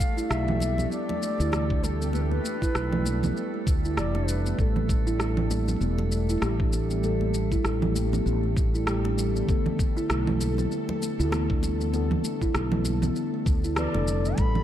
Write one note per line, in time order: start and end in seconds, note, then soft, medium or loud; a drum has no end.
0.00 9.48 G3 medium
0.00 0.15 A3 medium
0.00 14.38 A3 medium
0.00 14.39 A3 medium
0.00 14.38 D4 medium
0.00 14.38 G4 medium
0.00 14.39 A4 medium
0.00 0.31 F5 loud
0.00 shaker medium
0.15 0.29 E4 medium
0.15 14.63 A4 medium
0.15 shaker soft
0.30 0.85 B1 medium
0.30 0.47 A3 medium
0.30 0.91 E5 medium
0.30 cross-stick loud
0.30 shaker soft
0.48 0.60 A3 loud
0.48 low conga medium
0.60 0.78 G3 medium
0.60 high conga medium
0.60 shaker medium
0.78 0.90 B3 medium
0.78 low conga medium
0.78 shaker soft
0.91 1.01 B3 medium
0.91 1.85 D5 loud
0.91 shaker soft
1.09 1.21 A3 medium
1.09 muted conga medium
1.09 low conga medium
1.22 1.38 A3 medium
1.22 shaker medium
1.40 2.38 D2 loud
1.40 1.52 E4 medium
1.40 shaker soft
1.52 1.69 E3 medium
1.52 cross-stick loud
1.52 muted conga soft
1.52 high conga medium
1.52 shaker soft
1.70 1.82 D4 medium
1.70 kick loud
1.83 2.00 G3 medium
1.83 2.15 A4 medium
1.83 muted conga medium
1.83 shaker medium
2.01 2.13 B3 medium
2.01 shaker soft
2.13 2.30 A3 medium
2.13 2.23 B4 medium
2.13 muted conga soft
2.13 shaker soft
2.22 2.31 A4 medium
2.30 2.43 A3 medium
2.30 3.71 B4 loud
2.30 high conga medium
2.44 2.60 A3 medium
2.44 high conga soft
2.44 shaker medium
2.62 2.74 E4 medium
2.62 kick medium
2.62 high conga soft
2.62 shaker soft
2.75 3.30 B1 medium
2.75 2.92 A3 medium
2.75 cross-stick medium
2.75 shaker soft
2.92 3.05 A3 loud
2.92 low conga medium
3.05 3.23 G3 medium
3.05 high conga medium
3.05 shaker medium
3.23 3.35 B3 medium
3.23 low conga medium
3.23 shaker soft
3.36 3.46 B3 medium
3.36 shaker soft
3.54 3.66 A3 medium
3.67 3.96 D2 medium
3.67 3.83 A3 medium
3.67 kick loud
3.67 shaker medium
3.85 3.97 E4 medium
3.85 shaker soft
3.97 4.52 F1 medium
3.97 4.14 E3 loud
3.97 4.30 D5 medium
3.97 cross-stick loud
3.97 shaker soft
4.15 4.28 D4 medium
4.15 cross-stick soft
4.15 muted conga soft
4.28 4.45 G3 medium
4.28 4.59 B4 medium
4.28 shaker medium
4.46 4.57 B3 medium
4.46 shaker soft
4.57 5.75 A1 medium
4.57 6.38 G3 medium
4.57 4.74 A3 medium
4.57 6.40 A4 loud
4.57 kick loud
4.57 muted conga soft
4.57 shaker soft
4.76 4.88 A3 medium
4.76 high conga medium
4.76 low conga medium
4.89 5.05 A3 medium
4.89 kick medium
4.89 shaker medium
5.07 5.19 E4 medium
5.07 shaker soft
5.20 5.36 A3 medium
5.20 cross-stick medium
5.20 shaker soft
5.37 5.50 A3 loud
5.37 low conga medium
5.51 5.67 G3 medium
5.51 high conga medium
5.51 shaker medium
5.68 5.80 B3 medium
5.68 low conga medium
5.68 shaker soft
5.81 6.36 E1 medium
5.81 5.91 B3 medium
5.81 shaker soft
5.98 6.10 A3 medium
5.98 muted conga medium
5.98 low conga medium
6.12 6.27 A3 medium
6.12 shaker medium
6.29 6.42 E4 medium
6.29 shaker soft
6.41 7.58 A1 loud
6.41 6.59 E3 loud
6.41 7.00 G3 medium
6.41 7.01 G4 loud
6.41 cross-stick medium
6.41 muted conga soft
6.41 high conga medium
6.41 shaker soft
6.60 6.72 D4 medium
6.60 kick loud
6.73 6.90 G3 medium
6.73 muted conga medium
6.73 shaker medium
6.91 7.02 B3 medium
6.91 shaker soft
7.01 8.83 G3 medium
7.01 7.19 A3 medium
7.01 8.85 A4 loud
7.01 muted conga soft
7.01 shaker soft
7.21 7.33 A3 medium
7.21 high conga medium
7.34 7.50 A3 medium
7.34 high conga soft
7.34 shaker medium
7.52 7.64 E4 medium
7.52 kick medium
7.52 high conga soft
7.52 shaker soft
7.65 8.19 A1 medium
7.65 7.81 A3 medium
7.65 cross-stick medium
7.65 shaker soft
7.82 7.95 A3 loud
7.82 low conga medium
7.95 8.12 G3 medium
7.95 high conga medium
7.95 shaker medium
8.13 8.25 B3 medium
8.13 low conga medium
8.13 shaker soft
8.26 9.42 A1 medium
8.26 8.36 B3 medium
8.26 shaker soft
8.44 8.55 A3 medium
8.56 8.72 A3 medium
8.56 kick loud
8.56 shaker medium
8.74 8.86 E4 medium
8.74 shaker soft
8.86 9.04 E3 medium
8.86 9.45 G3 medium
8.86 9.46 G4 loud
8.86 cross-stick loud
8.86 shaker soft
9.05 9.17 D4 medium
9.05 cross-stick soft
9.05 muted conga medium
9.18 9.35 G3 medium
9.18 shaker medium
9.35 9.47 B3 medium
9.35 shaker soft
9.46 11.28 D3 medium
9.46 14.63 E3 medium
9.46 9.64 A3 medium
9.46 11.29 B3 medium
9.46 kick loud
9.46 muted conga soft
9.46 shaker soft
9.50 11.30 A4 loud
9.66 9.78 A3 medium
9.66 high conga medium
9.66 low conga medium
9.79 9.95 A3 medium
9.79 kick loud
9.79 shaker medium
9.97 10.09 E4 loud
9.97 shaker soft
10.10 10.65 B1 medium
10.10 10.26 A3 medium
10.10 cross-stick loud
10.10 shaker soft
10.27 10.40 A3 loud
10.27 low conga medium
10.41 10.57 G3 medium
10.41 high conga medium
10.41 shaker medium
10.58 10.70 B3 medium
10.58 low conga medium
10.58 shaker soft
10.71 10.81 B3 medium
10.71 shaker soft
10.89 11.00 A3 medium
10.89 muted conga medium
10.89 low conga medium
11.02 11.18 A3 medium
11.02 shaker medium
11.19 12.17 D2 loud
11.19 11.32 E4 medium
11.19 shaker soft
11.31 11.89 D3 loud
11.31 11.49 E3 loud
11.31 11.90 B3 medium
11.31 cross-stick loud
11.31 muted conga medium
11.31 high conga medium
11.31 shaker soft
11.50 11.62 D4 medium
11.50 kick loud
11.63 11.80 G3 medium
11.63 muted conga medium
11.63 shaker medium
11.81 11.92 B3 medium
11.81 shaker soft
11.91 13.73 D3 medium
11.91 12.09 A3 medium
11.91 13.74 B3 medium
11.91 muted conga soft
11.91 shaker soft
11.96 13.75 A4 loud
12.11 12.23 A3 medium
12.11 high conga medium
12.11 low conga medium
12.24 12.40 A3 medium
12.24 high conga soft
12.24 shaker medium
12.42 12.54 E4 loud
12.42 kick medium
12.42 high conga soft
12.42 shaker soft
12.54 13.09 B1 medium
12.54 12.71 A3 medium
12.54 cross-stick loud
12.54 shaker soft
12.72 12.84 A3 loud
12.72 low conga medium
12.85 13.02 G3 medium
12.85 high conga medium
12.85 shaker medium
13.02 13.15 B3 medium
13.02 low conga medium
13.02 shaker soft
13.16 13.26 B3 medium
13.16 shaker soft
13.34 13.45 A3 medium
13.46 13.86 D2 medium
13.46 13.62 A3 medium
13.46 kick loud
13.46 shaker medium
13.64 13.76 E4 medium
13.64 shaker soft
13.76 13.91 D3 medium
13.76 13.94 E3 medium
13.76 13.92 B3 medium
13.76 13.93 B4 medium
13.76 14.40 D5 loud
13.76 cross-stick loud
13.76 shaker soft
13.94 14.32 F1 medium
13.94 14.03 D3 medium
13.94 14.03 B3 medium
13.94 14.07 D4 medium
13.94 14.04 A4 medium
13.94 cross-stick soft
13.94 muted conga medium
14.08 14.24 G3 medium
14.08 shaker medium
14.25 14.37 B3 medium
14.25 shaker soft
14.36 14.63 A1 loud
14.36 14.63 G3 loud
14.36 14.54 A3 medium
14.36 14.63 B5 loud
14.36 kick loud
14.36 closed hi-hat soft
14.36 muted conga soft
14.36 shaker soft
14.40 14.63 A4 loud
14.55 14.63 A3 medium
14.55 high conga soft
14.55 low conga medium